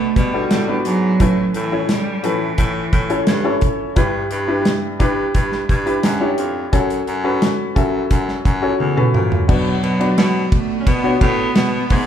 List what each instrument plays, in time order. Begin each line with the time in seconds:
Already playing: baritone saxophone B2, felt piano B2 B3 D4 F#4 A4 B4, cello A3
0.16 baritone saxophone B2, cello G3, kick, closed hi-hat
0.33 felt piano B3 D4 F#4 A4
0.51 baritone saxophone A2, snare, closed hi-hat
0.68 felt piano B3 D4 F#4 B4
0.85 baritone saxophone G#2, cello F#3, closed hi-hat
1.20 baritone saxophone A2, felt piano A2 C#4 E4 A4 B4, kick, closed hi-hat
1.54 baritone saxophone A2, cello E3, closed hi-hat
1.72 felt piano C#4 E4 A4 C#5
1.89 cello G3, snare, closed hi-hat
2.23 baritone saxophone A2, cello E3, felt piano C#4 E4 A4 B4, closed hi-hat
2.58 baritone saxophone A2, kick, closed hi-hat
2.93 baritone saxophone A2, kick, closed hi-hat
3.09 felt piano C#4 E4 A4 C#5, closed hi-hat
3.27 baritone saxophone G2, snare, closed hi-hat
3.44 felt piano C#4 E4 A4 C#5
3.61 kick, closed hi-hat
3.96 felt piano G2 D4 E4 G4 B4, baritone saxophone G2, kick, closed hi-hat
4.31 baritone saxophone G2, closed hi-hat
4.48 felt piano D4 E4 G4 B4
4.65 snare, closed hi-hat
5.00 baritone saxophone G2, felt piano D4 E4 G4 B4, kick, closed hi-hat
5.35 baritone saxophone G2, kick, closed hi-hat
5.52 snare
5.69 baritone saxophone G2, kick, closed hi-hat
5.86 felt piano D4 E4 G4 B4, closed hi-hat
6.03 baritone saxophone F#2, snare, closed hi-hat
6.20 felt piano D4 E4 G4 C#5
6.38 baritone saxophone F2, closed hi-hat
6.72 baritone saxophone F#2, felt piano C#4 F#4 A4 C#5, kick, closed hi-hat
6.90 closed hi-hat
7.07 baritone saxophone F#2, closed hi-hat
7.24 felt piano C#4 F#4 A4 B4
7.42 snare, closed hi-hat
7.75 baritone saxophone F#2, felt piano C#4 F#4 A4 E5, kick, closed hi-hat
8.11 baritone saxophone F#2, kick, closed hi-hat
8.28 snare
8.45 baritone saxophone F#2, kick, closed hi-hat
8.62 felt piano C#4 F#4 A4 C#5
8.80 baritone saxophone E2, high tom
8.96 felt piano C#4 F#4 A4 B4, mid tom
9.14 baritone saxophone A#2, mid tom
9.32 floor tom
9.48 felt piano B2 B3 D4 F#4 B4 D5, baritone saxophone B2, cello F#3, kick, crash
9.83 baritone saxophone B2, ride
10.00 felt piano B3 D4 F#4 B4 D5, ride
10.18 baritone saxophone B2, snare, ride
10.52 cello A3, kick, ride
10.80 cello C#4
10.87 baritone saxophone B2, cello B3, kick, ride
11.03 felt piano B3 D4 F#4 B4 C#5
11.21 baritone saxophone A2, cello B3, kick, ride
11.55 baritone saxophone B2, snare, ride
11.90 baritone saxophone G#2, cello A3, kick, open hi-hat, ride
11.98 cello B3